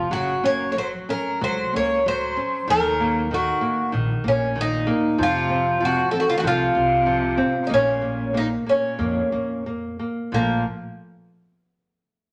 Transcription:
Already playing: F4
0.10 F#1 C#3 F#3 F#4
0.44 A#3 C#4 C#5
0.70 A#3 C#5
0.76 F#3 C5
1.09 F#3 C#4 A#4
1.41 C#2 F#3 C5
1.73 C#2 A#3 C#4 C#5
2.06 F#3 C5
2.37 C#4
2.67 D#2 D#3 F#3 A#4
3.00 A#3
3.31 D#3 F#4
3.61 A#3
3.92 A#1 D#3
4.24 A#1 A#2 A#3
4.28 C#4
4.56 A#2 D#3
4.61 D#4
4.87 A#3
5.18 F2 C3 F3
5.23 F4
5.50 C4
5.80 C3 F3
5.85 F#4
6.08 F3 A4
6.13 C4
6.17 D#3 F#4
6.27 C#3 F4
6.35 D#3 F#4
6.40 F3 F#4
6.44 C2 C3 F4
6.75 C2 C4
7.06 F3
7.37 C4
7.62 C3
7.67 A#2 A#3 D#4
7.71 A#1 C#4
8.01 A#3
8.33 A#2 A#3
8.37 D#4
8.66 A#2 A#3 C#4
8.99 F2 A#3
9.32 F2 A#3
9.66 A#3
9.99 A#3
10.32 A#1 A#2 F3 A#3

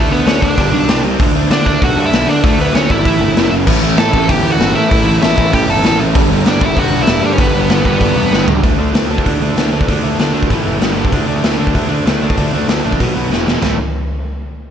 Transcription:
Already playing: D3 A3 D4 A4
0.11 D2 D3 A3 B3 D4 B4
0.26 D2 D3 A3 C#4 D4 C#5, snare, open hi-hat
0.42 D2 D3 A3 D4 D5, kick
0.58 G1 G2 D3 G3, kick, open hi-hat
0.72 B1 G2 D3 G3
0.88 C2 C3 G3 C4, snare, open hi-hat
1.03 C2 C3 G3 C4
1.20 D2 D3 A3 D4, kick, open hi-hat
1.35 D2 D3 A3 D4
1.50 D3 A3 D4 D5, snare, open hi-hat
1.65 D2 D3 A3 D4, kick
1.82 B1 D3 A3 D4 F#4 F#5, kick, open hi-hat
1.97 G2 D3 A3 D4
2.06 E4 E5
2.13 B1 D3 A3 D4, snare, open hi-hat
2.27 D3 A3 D4 D5
2.43 D2 D3 A3 D4 A4, kick, open hi-hat
2.59 D2 D3 A3 B3 D4 B4
2.73 D2 D3 A3 C#4 D4 C#5, snare, open hi-hat
2.90 G#1 D3 A3 D4 E4 E5, kick
3.04 A1 A2 E3 A3, kick, open hi-hat
3.20 G1 A2 E3 A3
3.36 F#1 F#2 C#3 F#3, snare, open hi-hat
3.51 F#1 F#2 C#3 F#3
3.67 A1 A2 E3 A3 C#4 E4, kick, crash
3.82 A1 A2 E3 A3
3.97 A2 E3 A3 A4 A5, snare, open hi-hat
4.13 A1 A2 E3 A3 C#4 E4, kick
4.28 G1 A2 E3 A3 G4 G5, kick, open hi-hat
4.43 D2 A2 E3 A3
4.52 F#4 F#5
4.59 G1 A2 E3 A3, snare, open hi-hat
4.75 A2 E3 A3 E4 E5
4.91 A1 A2 E3 A3 C#4 E4, kick, open hi-hat
5.06 A1 A2 E3 A3
5.22 A1 A2 E3 A3 E4 E5, snare, open hi-hat
5.37 A1 A2 E3 A3 C#4 E4, kick
5.52 A1 A2 E3 A3 G4 G5, kick, open hi-hat
5.68 G1 A2 E3 A3 A4 A5
5.83 A1 A2 E3 A3, snare, open hi-hat
6.00 A1 A2 E3 A3
6.15 G1 G2 D3 G3 B3 D4, kick, open hi-hat
6.30 G1 G2 D3 G3
6.45 G2 D3 G3 D4, snare, open hi-hat
6.51 D5
6.60 G1 G2 D3 G3 B3 D4, kick
6.64 E4 E5
6.76 E1 G2 D3 G3 F#4 F#5, kick, open hi-hat
6.92 B1 G2 D3 G3
7.02 E4 E5
7.07 E1 G2 D3 G3, snare, open hi-hat
7.22 G2 D3 G3 D4 D5
7.33 C#4 C#5
7.38 G1 G2 D3 G3 B3 D4 B4, kick, open hi-hat
7.54 G1 G2 D3 G3
7.69 G1 G2 D3 G3, snare, open hi-hat
7.84 G1 G2 D3 G3 B3 D4 B4, kick
8.00 G1 G2 D3 G3, kick, open hi-hat
8.16 E1 G2 D3 G3
8.31 G1 G2 D3 G3, snare
8.47 C#2 G2 D3 G3, floor tom
8.63 D2 D3 A3 D4, kick, open hi-hat
8.78 D2 D3 A3 D4
8.93 D2 D3 A3 D4, snare, open hi-hat
9.09 D2 D3 A3 D4
9.18 kick
9.25 D2 D3 A3 D4, kick, open hi-hat
9.41 D2 D3 A3 D4
9.57 D2 D3 A3 D4, snare, open hi-hat
9.72 D2 D3 A3 D4
9.81 kick
9.88 D2 D3 A3 D4, kick, open hi-hat
10.04 D2 D3 A3 D4
10.19 D2 D3 A3 D4, snare, open hi-hat
10.33 D2 D3 A3 D4
10.43 kick
10.50 A1 A2 E3 A3, kick, open hi-hat
10.64 F#1 A2 E3 A3
10.79 G1 G2 D3 G3, snare, open hi-hat
10.96 G2 D3 G3
11.05 kick
11.12 D2 D3 A3 D4, kick, open hi-hat
11.27 D2 D3 A3 D4
11.43 D2 D3 A3 D4, snare, open hi-hat
11.58 D2 D3 A3 D4
11.67 kick
11.74 D2 D3 A3 D4, kick, open hi-hat
11.88 D2 D3 A3 D4
12.05 D2 D3 A3 D4, snare, open hi-hat
12.21 D2 D3 A3 D4
12.30 kick
12.38 D2 D3 A3 D4, kick, open hi-hat
12.53 D2 D3 A3 D4
12.68 D2 D3 A3 D4, snare, open hi-hat
12.84 A#1 D3 A3 D4
12.92 kick
12.99 B1 B2 F#3 B3, kick, open hi-hat
13.15 B1 B2 F#3 B3
13.30 E1 E2 B2 E3, snare
13.47 E2 B2 E3, snare
13.62 A1 A2 E3 A3, snare, floor tom, crash

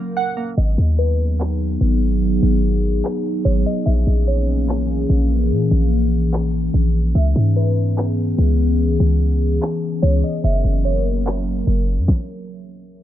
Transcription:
Already playing: F#3 A#3 C#4 A#4
0.17 F#5
0.37 A#3
0.57 G#1 F#3 B3 D#4 G#4 D#5
0.78 D#2
0.99 B4
1.40 clap
1.81 G#1
2.42 G#1
3.05 clap
3.45 G#1 C#5
3.66 D#5
3.86 A#1 E3 A#3 C#4 E5
4.07 A#1
4.28 C#5
4.69 clap
5.10 A#1
5.51 A#2
5.71 A#1
6.34 clap
6.74 A#1
7.15 C#2 B3 G#4 E5
7.36 G#2
7.56 B4
7.98 clap
8.38 C#2
9.00 C#2
9.62 clap
10.02 C#2 C#5
10.24 D#5
10.44 F#1 F#3 A#3 A#4 E5
10.64 F#1
10.85 C#5
11.27 clap
11.67 F#1
11.98 F#2
12.08 kick, snare

